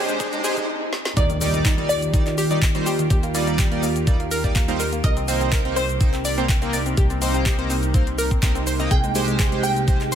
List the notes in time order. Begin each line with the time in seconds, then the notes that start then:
Already playing: A#2 G#3 A#3 C4 G4 G#4 C5 D#5, riser
0.09 G#3, closed hi-hat, shaker
0.20 G#3 G4 G#4 C5, kick, closed hi-hat, shaker
0.33 G#3, closed hi-hat, shaker
0.44 G#3 G4 G#4 C5, open hi-hat, shaker
0.57 G#3, kick, closed hi-hat, shaker
0.93 snare
1.05 snare
1.17 D#2 D#3 A#3 D#4 F4 G4 A#4 D5, kick, closed hi-hat, impact, shaker
1.30 D#3, closed hi-hat, shaker
1.41 D#3 G3 D#4 D5, open hi-hat, shaker
1.54 D#3, closed hi-hat, shaker
1.65 D#4, kick, clap, closed hi-hat, shaker
1.78 D#3 G3 D#4 D5, closed hi-hat
1.89 D#3 D5, open hi-hat, shaker
2.02 closed hi-hat, shaker
2.14 D#3 G3 D#4 D5, kick, closed hi-hat, shaker
2.26 D#3, clap, closed hi-hat
2.38 G4, open hi-hat, shaker
2.51 D#3 G3 D#4 D5, closed hi-hat, shaker
2.62 D#3, kick, clap, closed hi-hat, shaker
2.75 D#3 G3 D#4 C5, closed hi-hat, shaker
2.86 G4, open hi-hat, shaker
2.99 D#3, closed hi-hat, shaker
3.10 D#2 G4, kick, closed hi-hat, shaker
3.23 A#3, closed hi-hat, shaker
3.35 G3 A#3 D#4 D5, open hi-hat, shaker
3.47 A#3, closed hi-hat, shaker
3.59 G4, kick, clap, closed hi-hat, shaker
3.72 G3 A#3 D#4 D5, closed hi-hat
3.83 A#3, open hi-hat, shaker
3.96 closed hi-hat, shaker
4.07 G3 A#3 D#4 D5, kick, closed hi-hat, shaker
4.20 A#3, closed hi-hat
4.31 A#4, open hi-hat, shaker
4.44 G3 A#3 D#4 D5, kick, closed hi-hat, shaker
4.56 A#3, kick, clap, closed hi-hat, shaker
4.68 G3 A#3 D#4 C5, closed hi-hat, shaker
4.80 A#4, open hi-hat, shaker
4.93 A#3, closed hi-hat, shaker
5.04 C2 C3 G3 A#3 D#4 A#4 D#5, kick, closed hi-hat, shaker
5.17 C4, closed hi-hat, shaker
5.28 A#3 C4 D#4 C5, open hi-hat, shaker
5.41 C4, closed hi-hat, shaker
5.52 A#4, kick, clap, closed hi-hat, shaker
5.65 A#3 C4 D#4 C5, closed hi-hat
5.76 C4 C5, open hi-hat, shaker
5.89 closed hi-hat, shaker
6.01 A#3 C4 D#4 C5, kick, closed hi-hat, shaker
6.13 C4, clap, closed hi-hat
6.25 D5, open hi-hat, shaker
6.38 A#3 C4 D#4 C5, closed hi-hat, shaker
6.49 C4, kick, clap, closed hi-hat, shaker
6.62 A#3 C4 D#4 A#4, closed hi-hat, shaker
6.73 D5, open hi-hat, shaker
6.86 C4, closed hi-hat, shaker
6.97 C2 G4, kick, closed hi-hat, shaker
7.10 C4, closed hi-hat, shaker
7.22 A#3 C4 D#4 C5, open hi-hat, shaker
7.34 C4, closed hi-hat, shaker
7.46 G4, kick, clap, closed hi-hat, shaker
7.59 A#3 C4 D#4 C5, closed hi-hat
7.70 C4, open hi-hat, shaker
7.83 closed hi-hat, shaker
7.94 A#3 C4 D#4 C5, kick, closed hi-hat, shaker
8.07 C4, closed hi-hat
8.18 A#4, open hi-hat, shaker
8.31 C4, kick, closed hi-hat, shaker
8.43 A#3 C4 D#4 A#4, kick, clap, closed hi-hat, shaker
8.55 C4, closed hi-hat, shaker
8.67 C5, open hi-hat, shaker
8.80 A#3 C4 D#4 D#5, closed hi-hat, shaker
8.91 C2 G#3 G4 G#4 G5, kick, closed hi-hat, shaker
9.04 G#3, closed hi-hat, shaker
9.15 G#3 G4 C5, open hi-hat, shaker
9.28 G#3, closed hi-hat, shaker
9.39 G#4, kick, clap, closed hi-hat, shaker
9.52 G#3 G4 C5, closed hi-hat
9.63 G#3 G5, open hi-hat, shaker
9.76 closed hi-hat, shaker
9.88 G#3 G4 C5, kick, closed hi-hat, shaker
10.01 G#3, clap, closed hi-hat
10.12 C5